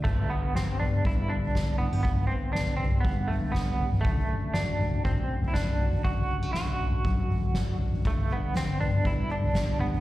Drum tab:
CC |x---------------|----------------|----------------|----------------|
SD |----o-------o---|----o-------o---|----o-------o---|----o-------o---|
T2 |----o-o--------o|----------o----o|----o-o--------o|----------o----o|
FT |oo----ooo--o-oo-|oo--o-ooo--o-ooo|oo----ooo--o-oo-|oo--o-ooo--o-ooo|
BD |o-------o---o---|o-------o---o---|o-------o---o---|o-------o---o---|

CC |----------------|
SD |----o-------o---|
T2 |----o-o--------o|
FT |oo----ooo--o-oo-|
BD |o-------o---o---|